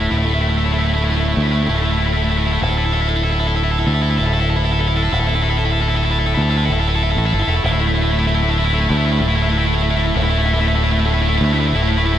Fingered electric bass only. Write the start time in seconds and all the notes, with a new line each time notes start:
0.12 D1
1.37 D2
1.68 D1
2.62 D1
3.87 D2
4.19 D1
5.13 D1
6.37 D2
6.69 D1
7.17 A1
7.32 G1
7.47 E1
7.64 D1
8.90 D2
9.21 D1
10.16 D1
11.41 D2
11.73 D1